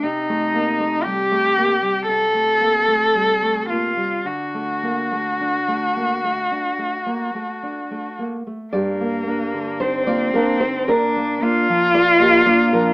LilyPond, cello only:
\new Staff \with { instrumentName = "Cello" } { \time 4/4 \key g \minor \tempo 4 = 55 ees'4 g'4 a'4. f'8 | fis'2.~ fis'8 r8 | bes4 c'4 d'8 f'4. | }